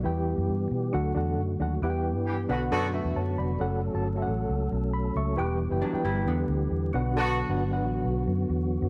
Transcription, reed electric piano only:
<<
  \new Staff \with { instrumentName = "Reed electric piano" } { \time 4/4 \key e \dorian \tempo 4 = 135 << { r1 | r2. <cis'' a''>8 <d'' b''>8~ | <d'' b''>8 r2 r8 b''8 <e'' cis'''>8~ | <e'' cis'''>8 r2. r8 |
r1 | } \\ { <e' g' b' g''>4~ <e' g' b' g''>16 r8. <d' fis' a' fis''>8 <d' fis' a' fis''>8 r8 <d' fis' a' fis''>16 r16 | <e' g' b' fis'' g''>4~ <e' g' b' fis'' g''>16 r16 <d' fis' b' fis''>8. r16 <d' fis' b' e''>8 r4 | <cis' fis' a' fis''>8 r16 <cis' fis' a' a''>16 r16 <cis' fis' a' e'' fis''>4~ <cis' fis' a' e'' fis''>16 r4. | <e' g' b' g''>8 r16 <e' g' b' g''>16 r16 <e' g' b' g''>4~ <e' g' b' g''>16 r4 <d' fis' b' fis''>8~ |
<d' fis' b' fis''>8 r16 <d' fis' b' fis''>16 r16 <d' fis' b' fis''>4~ <d' fis' b' fis''>16 r4. | } >> }
  \new Staff \with { instrumentName = "Reed electric piano" } { \clef bass \time 4/4 \key e \dorian e4. r8 d4. r8 | e4. b,4. r4 | r1 | e4. r2 b,8~ |
b,4 r2. | }
>>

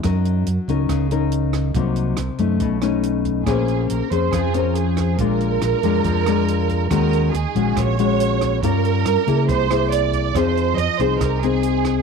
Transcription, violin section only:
\new Staff \with { instrumentName = "Violin section" } { \time 4/4 \key bes \minor \tempo 4 = 140 r1 | r1 | aes'4 bes'8 c''8 aes'8 bes'8 aes'4 | bes'1 |
bes'4 aes'4 des''2 | bes'2 c''4 d''4 | c''4 ees''8 c''8 bes'8 aes'4. | }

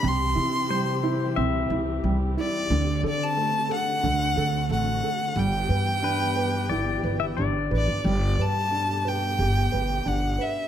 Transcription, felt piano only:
\new Staff \with { instrumentName = "Felt piano" } { \time 4/4 \key g \major \tempo 4 = 90 c8 e'8 g8 e'8 c'8 e'8 g8 e'8 | d8 a'8 a8 a'8 d8 a'8 a8 a'8 | g8 b'8 d'8 b'8 e'8 b'8 d'8 b'8 | g8 b'8 d'8 b'8 g'8 b'8 d'8 b'8 | }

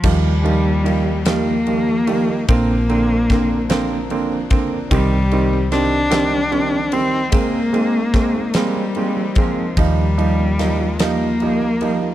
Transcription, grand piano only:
\new Staff \with { instrumentName = "Grand piano" } { \clef bass \time 6/8 \key ees \major \tempo 4. = 49 <ees f g>8 <ees f g>8 <ees f g>8 <ees f g>8 <ees f g>8 <ees f g>8 | <d bes c'>8 <d bes c'>8 <d bes c'>8 <d bes c'>8 <d bes c'>8 <d bes c'>8 | <ees g c'>8 <ees g c'>8 <ees g c'>8 <ees g c'>8 <ees g c'>8 <ees g c'>8 | <aes bes c'>8 <aes bes c'>8 <aes bes c'>8 <aes bes c'>8 <aes bes c'>8 <aes bes c'>8 |
<f g ees'>8 <f g ees'>8 <f g ees'>8 <f g ees'>8 <f g ees'>8 <f g ees'>8 | }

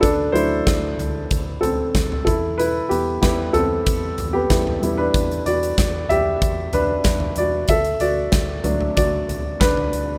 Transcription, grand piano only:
<<
  \new Staff \with { instrumentName = "Grand piano" } { \time 4/4 \key e \minor \tempo 4 = 94 <d' a'>8 <e' c''>2 <c' a'>4 <e' a'>8 | <e' b'>8 <b g'>8 g'8 <c' a'>4~ <c' a'>16 <b g'>4 <d' b'>16~ | <d' b'>8 <fis' d''>4 <g' e''>4 <d' b'>4 <fis' d''>8 | <a' e''>8 <fis' d''>4. <fis' d''>4 <d' b'>4 | }
  \new Staff \with { instrumentName = "Grand piano" } { \time 4/4 \key e \minor r8 <fis a d'>8 r2. | r4 <g b e'>2 <g b e'>8 <g b e'>8~ | <g b e'>4 r2. | r4. <fis a d'>2~ <fis a d'>8 | }
>>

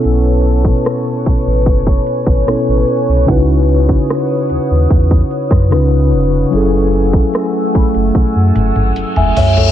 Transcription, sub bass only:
\new Staff \with { instrumentName = "Sub bass" } { \clef bass \time 4/4 \key b \mixolydian \tempo 4 = 74 b,,4 r8 a,,16 a,,16 fis,,8 r16 gis,,16 a,,16 a,,16 r16 c,16 | cis,4 r8 dis,16 dis,16 e,8 r16 fis,16 cis,8 eis,,8 | fis,,4 r8 fis,,16 fis,,16 r16 fis,16 fis,,16 gis,,16 fis,,16 fis,,16 fis,8 | }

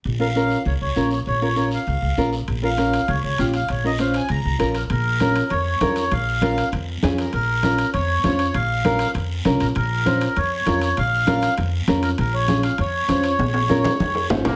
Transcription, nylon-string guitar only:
\new Staff \with { instrumentName = "Nylon-string guitar" } { \time 4/4 \key bes \minor \tempo 4 = 198 r8 <des' f' bes'>8 <des' f' bes'>8 r4. <des' f' bes'>8 r8 | r8 <des' f' bes'>8 <des' f' bes'>8 r4. <des' f' bes'>8 r8 | r8 <des' f' bes'>8 <des' f' bes'>8 r4. <des' f' g'>8 r8 | r8 <des' f' bes'>8 <des' f' c''>8 r4. <des' f' bes'>8 r8 |
r4 <des' f' bes'>8 r4. <des' f' bes'>8 r8 | r4 <des' f' bes'>8 r4. <des' f' aes'>8 r8 | r4 <des' f' bes'>8 r4. <des' f' c''>8 r8 | r4 <des' f' bes'>8 r4. <des' f' bes'>8 r8 |
r4 <des' f' c''>8 r4. <des' f' bes'>8 r8 | r4 <des' f' bes'>8 r4. <des' f' bes'>8 r8 | r4 <des' f' aes'>8 r4. <des' f' c''>8 r8 | r4 <des' f' bes'>8 r4 bes'8 <des' f' c'' des''>8 f''8 | }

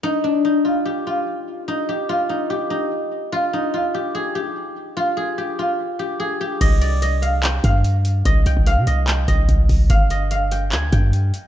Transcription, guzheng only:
\new Staff \with { instrumentName = "Guzheng" } { \time 4/4 \key c \minor \tempo 4 = 146 ees'8 d'8 ees'8 f'8 g'8 f'4. | ees'8 g'8 f'8 ees'8 g'8 ees'4. | f'8 ees'8 f'8 g'8 aes'8 g'4. | f'8 aes'8 g'8 f'8 r8 g'8 aes'8 g'8 |
ees''8 d''8 ees''8 f''8 g''8 f''4. | ees''8 g''8 f''8 ees''8 g''8 ees''4. | f''8 ees''8 f''8 g''8 aes''8 g''4. | }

